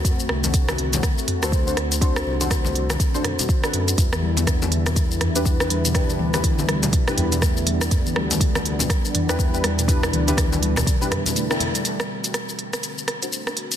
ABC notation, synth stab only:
X:1
M:4/4
L:1/16
Q:"Swing 16ths" 1/4=122
K:Em
V:1 name="Synth stab"
[DFAc]8- [DFAc]3 [DFAc]2 [DFAc]3 | [DFAc]3 [DFAc]6 [DFAc]4 [DFAB]3 | z8 z3 [DEGB]2 [DEGB]3 | [DEGB]3 [DEGB]6 [DEGB]6- [DEGB]- |
[DEGB]8- [DEGB]3 [DEGB]2 [DEGB]3 | [DEGB]3 [DEGB]6 [DEGB]4 [DEGA]3 | z8 z3 [DFAc]2 [DFA]3 |]